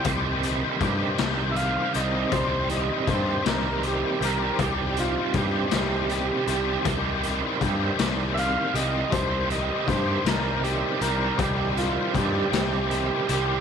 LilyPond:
<<
  \new Staff \with { instrumentName = "Transistor combo organ" } { \time 6/8 \key c \minor \tempo 4. = 53 r2 <e'' f''>8 ees''8 | c''8 ees''8 c''8 bes'8 g'8 bes'8 | g'8 f'8 g'2 | r2 <e'' f''>8 ees''8 |
c''8 ees''8 c''8 bes'8 g'8 bes'8 | g'8 f'8 g'2 | }
  \new Staff \with { instrumentName = "Overdriven electric guitar" } { \clef bass \time 6/8 \key c \minor <c ees g c' g'>4 <ees g c' g'>8 <c ees g c' g'>4 <g c' g'>8 | <c ees g c' g'>4 <ees g c' g'>8 <c ees g c' g'>4 <g c' g'>8 | <c ees g c' g'>4 <ees g c' g'>8 <c ees g c' g'>4 <g c' g'>8 | <c ees g c' g'>4 <ees g c' g'>8 <c ees g c' g'>4 <g c' g'>8 |
<c ees g c' g'>4 <ees g c' g'>8 <c ees g c' g'>4 <g c' g'>8 | <c ees g c' g'>4 <ees g c' g'>8 <c ees g c' g'>4 <g c' g'>8 | }
  \new Staff \with { instrumentName = "Picked electric bass" } { \clef bass \time 6/8 \key c \minor c,4 g,8 c,4 c,8 | c,4 g,8 c,4 c,8 | c,4 g,8 c,4 c,8 | c,4 g,8 c,4 c,8 |
c,4 g,8 c,4 c,8 | c,4 g,8 c,4 c,8 | }
  \new DrumStaff \with { instrumentName = "Drums" } \drummode { \time 6/8 <hh bd>8 hh8 <hh bd>8 <hh sn>8 hh8 hh8 | <hh bd>8 hh8 <hh bd>8 <hh sn>8 hh8 hh8 | <hh bd>8 hh8 <hh bd>8 <hh sn>8 hh8 hh8 | <hh bd>8 hh8 <hh bd>8 <hh sn>8 hh8 hh8 |
<hh bd>8 hh8 <hh bd>8 <hh sn>8 hh8 hh8 | <hh bd>8 hh8 <hh bd>8 <hh sn>8 hh8 hh8 | }
>>